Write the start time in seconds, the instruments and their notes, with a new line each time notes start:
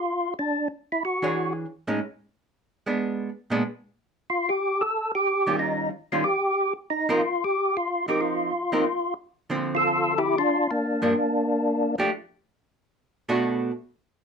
Already playing: tonewheel organ F4
0.39 tonewheel organ D4
0.92 tonewheel organ E4
1.05 tonewheel organ F#4
1.22 hollow-body jazz guitar E3 D4 G#4 C#5
1.87 hollow-body jazz guitar A2 G#3 C#4 D#4
2.86 hollow-body jazz guitar G#3 B3 D4
3.50 hollow-body jazz guitar A#2 G#3 B3 D4
4.30 tonewheel organ F4
4.49 tonewheel organ G4
4.81 tonewheel organ A4
5.15 tonewheel organ G4
5.47 hollow-body jazz guitar D#3 G3 C#4 F4
5.59 tonewheel organ D#4
6.12 hollow-body jazz guitar D#3 G3 C#4 F4, tonewheel organ F4
6.24 tonewheel organ G4
6.90 tonewheel organ D#4
7.09 hollow-body jazz guitar F3 C4 D#4 A#4, tonewheel organ F4
7.44 tonewheel organ G4
7.77 tonewheel organ F4
8.08 hollow-body jazz guitar F3 C4 D#4 A#4, tonewheel organ G4
8.21 tonewheel organ F4
8.72 hollow-body jazz guitar F3 C4 D#4 A#4
9.50 hollow-body jazz guitar D3 F3 C4
9.75 tonewheel organ F4 A4
10.18 tonewheel organ E4 G4
10.38 tonewheel organ D4 F4
10.71 tonewheel organ A#3 D4
11.02 hollow-body jazz guitar G2 F3 A#3 D4
11.98 hollow-body jazz guitar F3 A3 D4 G4
13.29 hollow-body jazz guitar B2 A3 D4 F#4